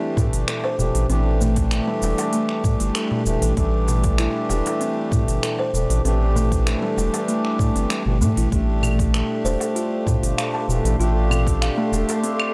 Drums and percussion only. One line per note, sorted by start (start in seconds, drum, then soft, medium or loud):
0.17 kick medium
0.17 darbuka tek medium
0.17 darbuka dum medium
0.17 shaker medium
0.33 open hi-hat medium
0.33 shaker soft
0.48 finger snap loud
0.48 open hi-hat soft
0.48 shaker soft
0.64 darbuka tek medium
0.79 darbuka dum medium
0.79 shaker medium
0.95 open hi-hat medium
0.95 shaker soft
1.10 open hi-hat soft
1.10 shaker soft
1.41 darbuka tek medium
1.41 darbuka dum medium
1.41 shaker medium
1.56 kick loud
1.56 open hi-hat medium
1.56 darbuka ka medium
1.56 shaker soft
1.71 finger snap medium
1.71 open hi-hat soft
1.71 shaker soft
1.88 darbuka ka soft
2.02 darbuka tek medium
2.02 shaker medium
2.18 open hi-hat soft
2.18 darbuka ka medium
2.18 darbuka tek medium
2.18 shaker soft
2.33 open hi-hat soft
2.33 shaker soft
2.49 finger snap soft
2.64 kick loud
2.64 shaker medium
2.80 open hi-hat medium
2.80 shaker soft
2.95 finger snap loud
2.95 open hi-hat soft
2.95 shaker soft
3.11 darbuka dum medium
3.26 darbuka dum medium
3.26 shaker medium
3.42 open hi-hat medium
3.42 shaker soft
3.57 kick loud
3.57 open hi-hat soft
3.57 shaker soft
3.88 darbuka tek medium
3.88 darbuka dum medium
3.88 shaker medium
4.04 kick loud
4.04 open hi-hat soft
4.04 darbuka ka soft
4.04 shaker soft
4.18 finger snap loud
4.18 open hi-hat soft
4.18 shaker soft
4.36 darbuka ka soft
4.49 darbuka tek medium
4.49 shaker medium
4.66 open hi-hat medium
4.66 darbuka ka medium
4.66 darbuka tek medium
4.66 shaker soft
4.81 open hi-hat soft
4.81 shaker soft
5.11 kick loud
5.11 darbuka tek medium
5.11 darbuka dum medium
5.11 shaker medium
5.28 open hi-hat soft
5.28 shaker soft
5.43 finger snap medium
5.43 open hi-hat soft
5.43 shaker soft
5.59 darbuka tek medium
5.74 darbuka dum medium
5.74 shaker medium
5.90 open hi-hat soft
5.90 shaker soft
6.05 open hi-hat soft
6.05 shaker soft
6.36 darbuka tek medium
6.36 darbuka dum medium
6.36 shaker medium
6.51 kick loud
6.51 open hi-hat medium
6.51 darbuka ka soft
6.51 shaker soft
6.67 finger snap medium
6.67 open hi-hat soft
6.67 shaker soft
6.83 darbuka ka soft
6.98 darbuka tek medium
6.98 shaker medium
7.14 open hi-hat medium
7.14 darbuka ka medium
7.14 darbuka tek medium
7.14 shaker soft
7.28 open hi-hat soft
7.28 shaker soft
7.45 finger snap soft
7.59 kick loud
7.59 shaker medium
7.76 open hi-hat soft
7.76 shaker soft
7.90 finger snap loud
7.90 open hi-hat soft
7.90 shaker soft
8.06 darbuka dum medium
8.21 darbuka dum medium
8.21 shaker medium
8.37 open hi-hat medium
8.37 shaker soft
8.52 kick loud
8.52 open hi-hat soft
8.52 shaker soft
8.82 darbuka tek medium
8.82 darbuka dum medium
8.82 claves medium
8.82 shaker medium
8.99 kick loud
8.99 open hi-hat medium
8.99 darbuka ka soft
8.99 shaker soft
9.14 finger snap medium
9.14 open hi-hat soft
9.14 shaker soft
9.30 darbuka ka soft
9.46 darbuka tek medium
9.46 shaker medium
9.60 open hi-hat soft
9.60 darbuka ka medium
9.60 darbuka tek medium
9.60 shaker soft
9.76 open hi-hat soft
9.76 shaker soft
10.07 kick loud
10.07 darbuka tek medium
10.07 darbuka dum medium
10.07 shaker medium
10.23 open hi-hat medium
10.23 shaker soft
10.38 finger snap medium
10.38 open hi-hat soft
10.38 shaker soft
10.55 darbuka tek medium
10.69 darbuka dum medium
10.69 shaker medium
10.85 open hi-hat medium
10.85 shaker soft
11.00 open hi-hat soft
11.00 shaker soft
11.31 darbuka tek medium
11.31 darbuka dum medium
11.31 claves medium
11.31 shaker medium
11.47 kick loud
11.47 open hi-hat medium
11.47 darbuka ka medium
11.47 shaker soft
11.62 finger snap medium
11.62 open hi-hat soft
11.62 shaker soft
11.79 darbuka ka soft
11.93 darbuka tek medium
11.93 shaker medium
12.09 open hi-hat soft
12.09 darbuka ka medium
12.09 darbuka tek medium
12.09 shaker soft
12.24 open hi-hat soft
12.24 shaker soft
12.40 finger snap soft
12.40 claves medium